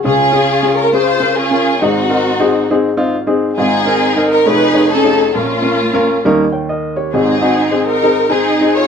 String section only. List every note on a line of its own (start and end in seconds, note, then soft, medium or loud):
0.04 0.89 C#4 medium
0.04 0.89 F4 medium
0.04 0.73 G#4 loud
0.76 0.93 A#4 loud
0.93 1.36 F4 medium
0.93 1.36 G#4 medium
0.93 1.38 C5 loud
1.37 1.79 C#4 medium
1.37 1.79 F4 medium
1.37 1.82 G#4 medium
1.81 2.66 C4 medium
1.81 2.66 D#4 medium
1.81 2.70 F#4 medium
3.57 4.43 C4 medium
3.57 4.43 D#4 medium
3.57 4.26 G#4 loud
4.29 4.47 A#4 loud
4.47 4.91 D#4 medium
4.47 5.32 G#4 medium
4.47 4.91 B4 loud
4.92 5.33 C#4 medium
4.92 5.33 D#4 medium
4.92 5.33 A4 loud
5.37 6.21 A#3 medium
5.37 6.21 C#4 medium
5.37 6.25 F4 medium
7.14 7.99 C4 medium
7.14 7.85 D#4 medium
7.14 7.82 G#4 medium
7.86 8.29 D#4 medium
7.86 8.28 A#4 loud
8.30 8.87 C4 medium
8.30 8.87 D#4 medium
8.30 8.73 G#4 loud
8.74 8.87 F4 medium
8.74 8.87 G#4 medium
8.74 8.87 C#5 loud